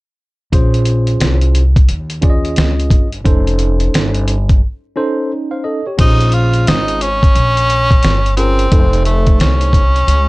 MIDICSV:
0, 0, Header, 1, 6, 480
1, 0, Start_track
1, 0, Tempo, 681818
1, 376, Time_signature, 4, 2, 24, 8
1, 7241, End_track
2, 0, Start_track
2, 0, Title_t, "Tine electric piano"
2, 0, Program_c, 0, 4
2, 368, Note_on_c, 0, 61, 73
2, 373, Note_on_c, 0, 65, 73
2, 377, Note_on_c, 0, 68, 67
2, 379, Note_on_c, 0, 72, 81
2, 1137, Note_off_c, 0, 61, 0
2, 1139, Note_off_c, 0, 65, 0
2, 1142, Note_off_c, 0, 68, 0
2, 1143, Note_off_c, 0, 72, 0
2, 1560, Note_on_c, 0, 61, 74
2, 1565, Note_on_c, 0, 65, 68
2, 1570, Note_on_c, 0, 68, 67
2, 1573, Note_on_c, 0, 74, 64
2, 1618, Note_on_c, 0, 75, 83
2, 1632, Note_off_c, 0, 74, 0
2, 2156, Note_off_c, 0, 61, 0
2, 2159, Note_off_c, 0, 65, 0
2, 2162, Note_off_c, 0, 68, 0
2, 2185, Note_off_c, 0, 75, 0
2, 2285, Note_on_c, 0, 61, 77
2, 2288, Note_on_c, 0, 63, 74
2, 2293, Note_on_c, 0, 69, 76
2, 2295, Note_on_c, 0, 72, 81
2, 3055, Note_off_c, 0, 61, 0
2, 3057, Note_off_c, 0, 63, 0
2, 3060, Note_off_c, 0, 69, 0
2, 3061, Note_off_c, 0, 72, 0
2, 3489, Note_on_c, 0, 61, 73
2, 3494, Note_on_c, 0, 63, 73
2, 3496, Note_on_c, 0, 69, 69
2, 3500, Note_on_c, 0, 72, 89
2, 3736, Note_off_c, 0, 69, 0
2, 3738, Note_off_c, 0, 72, 0
2, 3879, Note_on_c, 0, 77, 58
2, 3882, Note_on_c, 0, 72, 47
2, 3968, Note_off_c, 0, 77, 0
2, 3970, Note_off_c, 0, 72, 0
2, 3971, Note_on_c, 0, 75, 65
2, 3976, Note_on_c, 0, 69, 58
2, 4081, Note_off_c, 0, 61, 0
2, 4083, Note_off_c, 0, 63, 0
2, 4115, Note_off_c, 0, 75, 0
2, 4118, Note_off_c, 0, 69, 0
2, 4130, Note_on_c, 0, 73, 58
2, 4135, Note_on_c, 0, 67, 46
2, 4208, Note_on_c, 0, 61, 69
2, 4209, Note_on_c, 0, 65, 66
2, 4213, Note_on_c, 0, 68, 60
2, 4216, Note_on_c, 0, 72, 82
2, 4356, Note_off_c, 0, 73, 0
2, 4358, Note_off_c, 0, 67, 0
2, 4977, Note_off_c, 0, 61, 0
2, 4978, Note_off_c, 0, 65, 0
2, 4980, Note_off_c, 0, 68, 0
2, 4981, Note_off_c, 0, 72, 0
2, 5895, Note_on_c, 0, 61, 72
2, 5896, Note_on_c, 0, 65, 63
2, 5902, Note_on_c, 0, 68, 64
2, 5908, Note_on_c, 0, 70, 73
2, 6097, Note_off_c, 0, 61, 0
2, 6097, Note_off_c, 0, 65, 0
2, 6101, Note_off_c, 0, 68, 0
2, 6104, Note_off_c, 0, 70, 0
2, 6135, Note_on_c, 0, 57, 65
2, 6141, Note_on_c, 0, 63, 59
2, 6143, Note_on_c, 0, 69, 59
2, 6148, Note_on_c, 0, 71, 56
2, 6194, Note_on_c, 0, 72, 78
2, 6199, Note_off_c, 0, 71, 0
2, 6901, Note_off_c, 0, 57, 0
2, 6904, Note_off_c, 0, 63, 0
2, 6905, Note_off_c, 0, 69, 0
2, 6930, Note_off_c, 0, 72, 0
2, 7241, End_track
3, 0, Start_track
3, 0, Title_t, "Tenor saxophone"
3, 0, Program_c, 1, 66
3, 4228, Note_on_c, 1, 63, 98
3, 4460, Note_on_c, 1, 65, 91
3, 4471, Note_off_c, 1, 63, 0
3, 4701, Note_on_c, 1, 63, 89
3, 4712, Note_off_c, 1, 65, 0
3, 4941, Note_on_c, 1, 61, 111
3, 4951, Note_off_c, 1, 63, 0
3, 5885, Note_off_c, 1, 61, 0
3, 5889, Note_on_c, 1, 60, 97
3, 6344, Note_off_c, 1, 60, 0
3, 6375, Note_on_c, 1, 57, 77
3, 6599, Note_off_c, 1, 57, 0
3, 6624, Note_on_c, 1, 61, 96
3, 7241, Note_off_c, 1, 61, 0
3, 7241, End_track
4, 0, Start_track
4, 0, Title_t, "Upright bass"
4, 0, Program_c, 2, 32
4, 368, Note_on_c, 2, 34, 99
4, 828, Note_off_c, 2, 34, 0
4, 848, Note_on_c, 2, 36, 94
4, 1308, Note_off_c, 2, 36, 0
4, 1327, Note_on_c, 2, 39, 90
4, 1788, Note_off_c, 2, 39, 0
4, 1811, Note_on_c, 2, 37, 81
4, 2042, Note_off_c, 2, 37, 0
4, 2045, Note_on_c, 2, 31, 84
4, 2279, Note_off_c, 2, 31, 0
4, 2291, Note_on_c, 2, 29, 100
4, 2749, Note_off_c, 2, 29, 0
4, 2774, Note_on_c, 2, 31, 85
4, 3231, Note_off_c, 2, 31, 0
4, 4217, Note_on_c, 2, 34, 99
4, 4673, Note_off_c, 2, 34, 0
4, 4696, Note_on_c, 2, 32, 91
4, 5066, Note_off_c, 2, 32, 0
4, 5174, Note_on_c, 2, 34, 92
4, 5631, Note_off_c, 2, 34, 0
4, 5659, Note_on_c, 2, 31, 83
4, 6114, Note_off_c, 2, 31, 0
4, 6138, Note_on_c, 2, 29, 98
4, 6593, Note_off_c, 2, 29, 0
4, 6611, Note_on_c, 2, 36, 98
4, 7070, Note_off_c, 2, 36, 0
4, 7091, Note_on_c, 2, 37, 93
4, 7241, Note_off_c, 2, 37, 0
4, 7241, End_track
5, 0, Start_track
5, 0, Title_t, "Muted upright bass strokes"
5, 5089, Note_on_c, 9, 29, 41
5, 5159, Note_off_c, 9, 29, 0
5, 7241, End_track
6, 0, Start_track
6, 0, Title_t, "Drums"
6, 370, Note_on_c, 9, 36, 86
6, 372, Note_on_c, 9, 42, 88
6, 440, Note_off_c, 9, 36, 0
6, 443, Note_off_c, 9, 42, 0
6, 521, Note_on_c, 9, 42, 51
6, 591, Note_off_c, 9, 42, 0
6, 601, Note_on_c, 9, 42, 67
6, 672, Note_off_c, 9, 42, 0
6, 753, Note_on_c, 9, 42, 42
6, 824, Note_off_c, 9, 42, 0
6, 848, Note_on_c, 9, 42, 77
6, 855, Note_on_c, 9, 38, 83
6, 918, Note_off_c, 9, 42, 0
6, 925, Note_off_c, 9, 38, 0
6, 996, Note_on_c, 9, 42, 47
6, 1066, Note_off_c, 9, 42, 0
6, 1090, Note_on_c, 9, 42, 65
6, 1161, Note_off_c, 9, 42, 0
6, 1241, Note_on_c, 9, 36, 71
6, 1243, Note_on_c, 9, 42, 45
6, 1311, Note_off_c, 9, 36, 0
6, 1314, Note_off_c, 9, 42, 0
6, 1328, Note_on_c, 9, 42, 80
6, 1398, Note_off_c, 9, 42, 0
6, 1477, Note_on_c, 9, 42, 47
6, 1548, Note_off_c, 9, 42, 0
6, 1564, Note_on_c, 9, 42, 60
6, 1570, Note_on_c, 9, 36, 85
6, 1634, Note_off_c, 9, 42, 0
6, 1641, Note_off_c, 9, 36, 0
6, 1724, Note_on_c, 9, 42, 39
6, 1794, Note_off_c, 9, 42, 0
6, 1805, Note_on_c, 9, 42, 79
6, 1818, Note_on_c, 9, 38, 107
6, 1875, Note_off_c, 9, 42, 0
6, 1888, Note_off_c, 9, 38, 0
6, 1968, Note_on_c, 9, 42, 45
6, 2039, Note_off_c, 9, 42, 0
6, 2045, Note_on_c, 9, 36, 77
6, 2050, Note_on_c, 9, 42, 69
6, 2116, Note_off_c, 9, 36, 0
6, 2120, Note_off_c, 9, 42, 0
6, 2200, Note_on_c, 9, 42, 44
6, 2271, Note_off_c, 9, 42, 0
6, 2292, Note_on_c, 9, 36, 86
6, 2293, Note_on_c, 9, 42, 88
6, 2362, Note_off_c, 9, 36, 0
6, 2363, Note_off_c, 9, 42, 0
6, 2445, Note_on_c, 9, 42, 53
6, 2516, Note_off_c, 9, 42, 0
6, 2526, Note_on_c, 9, 42, 68
6, 2596, Note_off_c, 9, 42, 0
6, 2675, Note_on_c, 9, 42, 41
6, 2746, Note_off_c, 9, 42, 0
6, 2775, Note_on_c, 9, 42, 83
6, 2782, Note_on_c, 9, 38, 93
6, 2846, Note_off_c, 9, 42, 0
6, 2853, Note_off_c, 9, 38, 0
6, 2918, Note_on_c, 9, 42, 49
6, 2988, Note_off_c, 9, 42, 0
6, 3011, Note_on_c, 9, 42, 68
6, 3081, Note_off_c, 9, 42, 0
6, 3164, Note_on_c, 9, 36, 79
6, 3164, Note_on_c, 9, 42, 49
6, 3234, Note_off_c, 9, 36, 0
6, 3234, Note_off_c, 9, 42, 0
6, 4214, Note_on_c, 9, 49, 73
6, 4215, Note_on_c, 9, 42, 87
6, 4216, Note_on_c, 9, 36, 93
6, 4284, Note_off_c, 9, 49, 0
6, 4286, Note_off_c, 9, 36, 0
6, 4286, Note_off_c, 9, 42, 0
6, 4368, Note_on_c, 9, 42, 50
6, 4439, Note_off_c, 9, 42, 0
6, 4449, Note_on_c, 9, 42, 64
6, 4519, Note_off_c, 9, 42, 0
6, 4600, Note_on_c, 9, 42, 43
6, 4671, Note_off_c, 9, 42, 0
6, 4698, Note_on_c, 9, 42, 89
6, 4705, Note_on_c, 9, 38, 94
6, 4769, Note_off_c, 9, 42, 0
6, 4775, Note_off_c, 9, 38, 0
6, 4845, Note_on_c, 9, 42, 53
6, 4915, Note_off_c, 9, 42, 0
6, 4936, Note_on_c, 9, 42, 70
6, 5007, Note_off_c, 9, 42, 0
6, 5089, Note_on_c, 9, 36, 79
6, 5095, Note_on_c, 9, 42, 50
6, 5159, Note_off_c, 9, 36, 0
6, 5166, Note_off_c, 9, 42, 0
6, 5178, Note_on_c, 9, 42, 81
6, 5249, Note_off_c, 9, 42, 0
6, 5330, Note_on_c, 9, 42, 54
6, 5400, Note_off_c, 9, 42, 0
6, 5419, Note_on_c, 9, 42, 58
6, 5490, Note_off_c, 9, 42, 0
6, 5567, Note_on_c, 9, 36, 81
6, 5573, Note_on_c, 9, 42, 42
6, 5637, Note_off_c, 9, 36, 0
6, 5643, Note_off_c, 9, 42, 0
6, 5651, Note_on_c, 9, 42, 91
6, 5664, Note_on_c, 9, 38, 120
6, 5721, Note_off_c, 9, 42, 0
6, 5734, Note_off_c, 9, 38, 0
6, 5815, Note_on_c, 9, 42, 51
6, 5886, Note_off_c, 9, 42, 0
6, 5894, Note_on_c, 9, 42, 65
6, 5965, Note_off_c, 9, 42, 0
6, 6047, Note_on_c, 9, 42, 52
6, 6118, Note_off_c, 9, 42, 0
6, 6137, Note_on_c, 9, 42, 85
6, 6138, Note_on_c, 9, 36, 94
6, 6207, Note_off_c, 9, 42, 0
6, 6208, Note_off_c, 9, 36, 0
6, 6289, Note_on_c, 9, 42, 47
6, 6359, Note_off_c, 9, 42, 0
6, 6374, Note_on_c, 9, 42, 69
6, 6445, Note_off_c, 9, 42, 0
6, 6523, Note_on_c, 9, 42, 44
6, 6527, Note_on_c, 9, 36, 77
6, 6593, Note_off_c, 9, 42, 0
6, 6597, Note_off_c, 9, 36, 0
6, 6618, Note_on_c, 9, 42, 80
6, 6625, Note_on_c, 9, 38, 88
6, 6688, Note_off_c, 9, 42, 0
6, 6695, Note_off_c, 9, 38, 0
6, 6764, Note_on_c, 9, 42, 50
6, 6835, Note_off_c, 9, 42, 0
6, 6850, Note_on_c, 9, 36, 76
6, 6859, Note_on_c, 9, 42, 72
6, 6920, Note_off_c, 9, 36, 0
6, 6929, Note_off_c, 9, 42, 0
6, 7011, Note_on_c, 9, 42, 48
6, 7081, Note_off_c, 9, 42, 0
6, 7097, Note_on_c, 9, 42, 88
6, 7168, Note_off_c, 9, 42, 0
6, 7241, End_track
0, 0, End_of_file